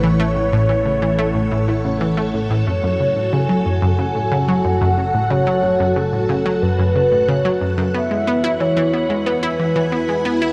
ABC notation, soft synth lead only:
X:1
M:4/4
L:1/16
Q:1/4=91
K:F#m
V:1 name="Soft synth lead"
c12 z4 | c4 g4 g4 f4 | c4 A4 B4 c3 z | e4 c4 B8 |]